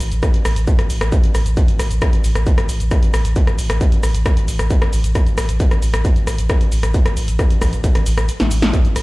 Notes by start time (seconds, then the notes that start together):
0.00 A1, open hi-hat, shaker
0.12 A1, closed hi-hat, shaker
0.23 kick, cross-stick, closed hi-hat, shaker
0.34 A1, closed hi-hat, shaker
0.45 A1, cross-stick, open hi-hat, shaker
0.56 A1, closed hi-hat, shaker
0.68 kick, closed hi-hat, shaker
0.79 A1, cross-stick, closed hi-hat, shaker
0.90 A1, open hi-hat, shaker
1.01 A1, cross-stick, closed hi-hat, shaker
1.12 kick, closed hi-hat, shaker
1.23 A1, closed hi-hat, shaker
1.35 A1, cross-stick, open hi-hat, shaker
1.46 A1, closed hi-hat, shaker
1.57 kick, closed hi-hat, shaker
1.68 A1, closed hi-hat, shaker
1.79 A1, cross-stick, open hi-hat, shaker
1.91 A1, closed hi-hat, shaker
2.02 kick, cross-stick, closed hi-hat, shaker
2.13 A1, closed hi-hat, shaker
2.24 A1, open hi-hat, shaker
2.35 A1, cross-stick, closed hi-hat, shaker
2.47 kick, closed hi-hat, shaker
2.58 A1, cross-stick, closed hi-hat, shaker
2.69 A1, open hi-hat, shaker
2.80 A1, closed hi-hat, shaker
2.91 kick, cross-stick, closed hi-hat, shaker
3.03 A1, closed hi-hat, shaker
3.14 A1, cross-stick, open hi-hat, shaker
3.25 A1, closed hi-hat, shaker
3.36 kick, closed hi-hat, shaker
3.47 A1, cross-stick, closed hi-hat, shaker
3.59 A1, open hi-hat, shaker
3.70 A1, cross-stick, closed hi-hat, shaker
3.81 kick, closed hi-hat, shaker
3.92 A1, closed hi-hat, shaker
4.03 A1, cross-stick, open hi-hat, shaker
4.14 A1, closed hi-hat, shaker
4.26 kick, cross-stick, closed hi-hat, shaker
4.37 A1, closed hi-hat, shaker
4.48 A1, open hi-hat, shaker
4.59 A1, cross-stick, closed hi-hat, shaker
4.70 kick, closed hi-hat, shaker
4.82 A1, cross-stick, closed hi-hat, shaker
4.93 A1, open hi-hat, shaker
5.04 A1, closed hi-hat, shaker
5.15 kick, cross-stick, closed hi-hat, shaker
5.26 A1, closed hi-hat, shaker
5.38 A1, cross-stick, open hi-hat, shaker
5.49 A1, closed hi-hat, shaker
5.60 kick, closed hi-hat, shaker
5.71 A1, cross-stick, closed hi-hat, shaker
5.82 A1, open hi-hat, shaker
5.94 A1, cross-stick, closed hi-hat, shaker
6.05 kick, closed hi-hat, shaker
6.16 A1, closed hi-hat, shaker
6.27 A1, cross-stick, open hi-hat, shaker
6.38 A1, closed hi-hat, shaker
6.50 kick, cross-stick, closed hi-hat, shaker
6.61 A1, closed hi-hat, shaker
6.72 A1, open hi-hat, shaker
6.83 A1, cross-stick, closed hi-hat, shaker
6.94 kick, closed hi-hat, shaker
7.06 A1, cross-stick, closed hi-hat, shaker
7.17 A1, open hi-hat, shaker
7.28 A1, closed hi-hat, shaker
7.39 kick, cross-stick, closed hi-hat, shaker
7.50 A1, closed hi-hat, shaker
7.62 A1, kick, cross-stick, open hi-hat, shaker
7.73 A1, closed hi-hat, shaker
7.84 kick, closed hi-hat, shaker
7.95 A1, cross-stick, closed hi-hat, shaker
8.06 A1, open hi-hat, shaker
8.18 A1, cross-stick, closed hi-hat, shaker
8.29 closed hi-hat, shaker
8.40 A1, snare, closed hi-hat, shaker
8.51 A1, open hi-hat, shaker
8.62 A1, snare, closed hi-hat, shaker
8.73 kick, closed hi-hat, shaker
8.85 A1, closed hi-hat, shaker
8.96 A1, cross-stick, open hi-hat, ride, shaker